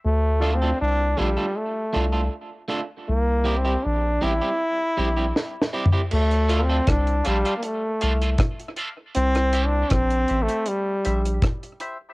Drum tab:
CC |------------------------------------------------|------------------------------------------------|x-----------------------------------------------|------------------------------------------------|
HH |------------------------------------------------|------------------------------------------------|---x--x-----x--x--x--x--x-----x--x--x--x--x-----|x--x--x-----x--x--x--x--x-----x--x--x--x--x-----|
SD |------------------------------------------------|------------------------------------o---o-------|------------r-----------------------r-----------|---r--------r-----------------------r-----------|
FT |------------------------------------------------|--------------------------------------------o---|------------------------------------------------|------------------------------------------------|
BD |------------------------------------------------|------------------------------------------------|------------o-----------------------o-----------|------------o-----------------------o-----------|